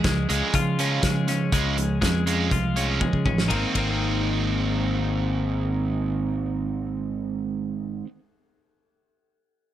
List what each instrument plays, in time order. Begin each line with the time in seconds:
0.04 fingered electric bass C#2, overdriven electric guitar C#3 F3, clean electric guitar G#3, kick, snare, closed hi-hat
0.29 fingered electric bass C#2, overdriven electric guitar C#3 F3 G#3, clean electric guitar G#3, closed hi-hat
0.54 fingered electric bass C#3, overdriven electric guitar C#3 F3, clean electric guitar F4, kick, closed hi-hat
0.79 overdriven electric guitar C#3 F3 G#3, clean electric guitar C#4, closed hi-hat
1.03 fingered electric bass C#3, overdriven electric guitar C#3 F3, clean electric guitar G#3, kick, snare, closed hi-hat
1.28 overdriven electric guitar C#3 F3, clean electric guitar C#4, snare, closed hi-hat
1.52 fingered electric bass C#2, overdriven electric guitar C#3 F3 G#3, clean electric guitar G#3, kick, closed hi-hat
1.77 overdriven electric guitar C#3 F3, closed hi-hat
2.01 fingered electric bass F2, overdriven electric guitar C#3 F3, clean electric guitar G#3, kick, snare, closed hi-hat
2.26 overdriven electric guitar C#3 F3 G#3, clean electric guitar G#3, closed hi-hat
2.51 fingered electric bass C2, overdriven electric guitar C#3 F3, clean electric guitar F4, kick, closed hi-hat
2.76 overdriven electric guitar C#3 F3 G#3, clean electric guitar C#4, closed hi-hat
3.01 fingered electric bass C#3, overdriven electric guitar C#3 F3, clean electric guitar G#3, kick
3.13 fingered electric bass C#3, kick
3.26 fingered electric bass A1, overdriven electric guitar C#3 F3, clean electric guitar C#4, kick
3.38 snare
3.48 fingered electric bass G#1, overdriven electric guitar G#2 D#3 G#3, clean electric guitar D#3 A#3, kick, ride
3.53 clean electric guitar C4, overdriven electric guitar C4 D#4
3.74 fingered electric bass G#1, overdriven electric guitar G#2 D#3 G#3 C4, clean electric guitar D#3 A#3 C4, kick, ride
3.78 overdriven electric guitar D#4